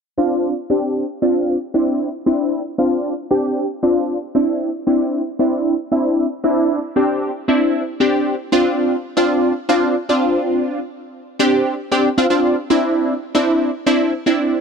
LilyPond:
\new Staff \with { instrumentName = "Analog polysynth" } { \time 4/4 \key d \minor \tempo 4 = 115 r16 <c' d' f'>8. r16 <c' d' g'>8. r16 <c' d' f'>8. r16 <c' d' e'>8. | r16 <c' d' e'>8. r16 <c' d' f'>8. r16 <c' d' g'>8. r16 <c' d' f'>8. | r16 <c' d' e'>8. r16 <c' d' e'>8. r16 <c' d' e'>8. r16 <c' d' e'>8. | r16 <c' d' e'>8. r16 <c' d' g'>8. r16 <c' d' e'>8. r16 <c' d' g'>8. |
r16 <c' d' f'>8. r8 <c' d' f'>8. r16 <c' d' f'>8 r16 <c' d' f'>8.~ | <c' d' f'>8 r4 r16 <c' d' g'>8. r16 <c' d' g'>16 r16 <c' d' f'>16 <c' d' f'>8 | r16 <c' d' e'>8. r8 <c' d' e'>8. r16 <c' d' e'>8 r16 <c' d' e'>8. | }